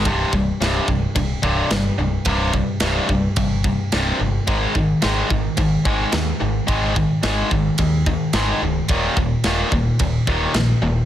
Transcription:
<<
  \new Staff \with { instrumentName = "Distorted electric guitar" } { \clef bass \time 4/4 \key c \minor \tempo 4 = 108 <c, g, c>8 <c, g,>8 <c, g, c>8 <c, g,>8 <c, g,>8 <c, g, c>8 <c, g,>8 <c, g,>8 | <c, g, c>8 <c, g,>8 <c, g, c>8 <c, g,>8 <c, g,>8 <c, g,>8 <c, g, c>8 <c, g,>8 | <aes, ees aes>8 <aes, ees>8 <aes, ees aes>8 <aes, ees>8 <aes, ees>8 <aes, ees aes>8 <aes, ees>8 <aes, ees>8 | <aes, ees aes>8 <aes, ees>8 <aes, ees aes>8 <aes, ees>8 <aes, ees>8 <aes, ees>8 <aes, ees aes>8 <aes, ees>8 |
<ees, bes, ees>8 <ees, bes,>8 <ees, bes, ees>8 <ees, bes,>8 <ees, bes,>8 <ees, bes, ees>8 <ees, bes,>8 <ees, bes,>8 | }
  \new Staff \with { instrumentName = "Picked electric bass" } { \clef bass \time 4/4 \key c \minor c,,8 c,,8 c,,8 c,,8 c,,8 c,,8 g,,8 c,,8 | c,,4 c,,8 c,,8 g,,4 c,,8 g,,8 | aes,,8 aes,,8 aes,,8 aes,,8 aes,,8 aes,,8 ees,8 aes,,8 | aes,,4 aes,,8 aes,,8 ees,4 aes,,8 des,,8 |
ees,,8 ees,,8 ees,,8 ees,,8 ees,,8 ees,,8 bes,,8 ees,,8 | }
  \new DrumStaff \with { instrumentName = "Drums" } \drummode { \time 4/4 <bd rb>8 bd8 <rb sn>8 bd8 <bd rb>8 bd8 <rb sn>4 | <bd rb>8 bd8 <rb sn>8 bd8 <bd rb>8 bd8 <rb sn>4 | <bd rb>8 bd8 <rb sn>8 bd8 <bd rb>8 bd8 <rb sn>4 | <bd rb>8 bd8 <rb sn>8 bd8 <bd rb>8 bd8 <rb sn>4 |
<bd rb>8 bd8 <rb sn>8 bd8 <bd rb>8 bd8 <rb sn>4 | }
>>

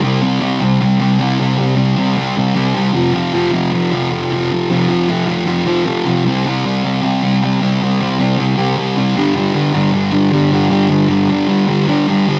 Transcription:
\new Staff \with { instrumentName = "Distorted electric guitar" } { \clef bass \time 4/4 \key c \mixolydian \tempo 4 = 155 <c g c'>8 <c g c'>8 <c g c'>8 <c g c'>8 <c g c'>8 <c g c'>8 <c g c'>8 <c g c'>8 | <c g c'>8 <c g c'>8 <c g c'>8 <c g c'>8 <c g c'>8 <c g c'>8 <c g c'>8 <f, c f>8 | <f, c f>8 <f, c f>8 <f, c f>8 <f, c f>8 <f, c f>8 <f, c f>8 <f, c f>8 <f, c f>8 | <f, c f>8 <f, c f>8 <f, c f>8 <f, c f>8 <f, c f>8 <f, c f>8 <f, c f>8 <f, c f>8 |
<c g c'>8 <c g c'>8 <c g c'>8 <c g c'>8 <c g c'>8 <c g c'>8 <c g c'>8 <c g c'>8 | <c g c'>8 <c g c'>8 <c g c'>8 <c g c'>8 <c g c'>8 <c g c'>8 <c g c'>8 <g, d g>8 | <g, d g>8 <g, d g>8 <g, d g>8 <g, d g>8 <g, d g>8 <g, d g>8 <g, d g>8 <g, d g>8 | <g, d g>8 <g, d g>8 <g, d g>8 <g, d g>8 <g, d g>8 <g, d g>8 <g, d g>8 <g, d g>8 | }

